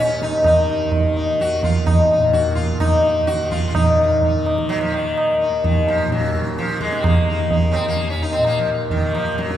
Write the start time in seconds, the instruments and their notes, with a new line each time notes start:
Already playing: tanpura D#2 A#2 D#3, sitar C#4
0.09 tabla te
0.22 sitar D#4, tabla ke
0.33 tabla te
0.42 tanpura D#3, tabla na, tabla ge
0.46 sitar D#4
0.70 sitar D#4
0.92 tabla tin, tabla ge
1.00 tanpura D#3
1.16 sitar D#4
1.40 sitar F#4, tabla te
1.59 tanpura D#2
1.63 sitar F4, tabla tin, tabla ge
1.86 sitar D#4, tabla na, tabla ge
2.11 sitar D#4
2.15 tanpura A#2
2.33 sitar F#4, tabla te
2.51 sitar F#4
2.55 sitar F4, tabla tin, tabla ge
2.74 tanpura D#3
2.80 sitar D#4, tabla na, tabla ge
3.03 sitar D#4
3.27 sitar F#4, tabla te
3.31 tanpura D#3
3.51 sitar F4, tabla tin, tabla ge
3.68 sitar F4
3.75 tanpura A#2, sitar D#4, tabla na, tabla ge
4.01 sitar D#4
4.22 sitar D#4, tabla tin, tabla ge
4.33 tanpura D#3
4.46 tabla na
4.58 tabla ke
4.69 sitar F#3, tabla na
4.81 sitar F3
4.91 sitar D#3, tanpura D#3, tabla na
5.18 tabla na
5.41 sitar D#4
5.50 tanpura D#2
5.64 sitar D#3, tabla tin, tabla ge
5.88 sitar F3, tabla na
6.05 tanpura A#2
6.12 sitar F#3, tabla te
6.24 tabla te
6.35 tabla ke
6.47 tabla te
6.58 sitar F3, tabla te
6.67 tanpura D#3, tabla te
6.80 sitar G#3, tabla ke
6.93 tabla te
6.98 sitar C4
7.04 sitar A#3, tabla na, tabla ge
7.23 tanpura D#3
7.29 sitar D#4
7.51 sitar D#4, tabla tin, tabla ge
7.71 sitar C4 C#4, tabla na
7.80 tanpura D#2
7.88 sitar A#3
7.97 tabla te
8.10 sitar C#4
8.20 sitar D#4, tabla te
8.33 sitar C4
8.38 tanpura A#2
8.45 sitar A#3, tabla na
8.58 sitar F3
8.90 sitar D#3, tabla tin, tabla ge
8.97 tanpura D#3
9.14 sitar F3, tabla na
9.38 sitar F#3, tabla te
9.51 tanpura D#3, tabla te